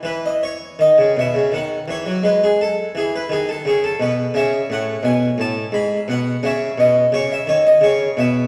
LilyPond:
<<
  \new Staff \with { instrumentName = "Harpsichord" } { \time 3/4 \key e \major \tempo 4 = 85 << { b'16 dis''16 cis''8 dis''8 e''8 fis''8 cis''8 | b'16 gis'16 a'8 gis'16 b'16 gis'16 a'16 gis'16 a'16 b'8 | e''8 fis''8 gis''8 a''8 b''8 fis''8 | e''8 dis''8 cis''16 e''16 cis''16 dis''16 cis''8 e''8 | } \\ { r2. | r2. | cis'2 r4 | cis'2. | } >> }
  \new Staff \with { instrumentName = "Harpsichord" } { \clef bass \time 3/4 \key e \major e4 dis16 cis16 b,16 cis16 dis8 e16 fis16 | gis4 e8 dis8 cis8 b,8 | cis8 a,8 b,8 a,8 gis,8 b,8 | cis8 b,8 cis8 dis8 cis8 b,8 | }
>>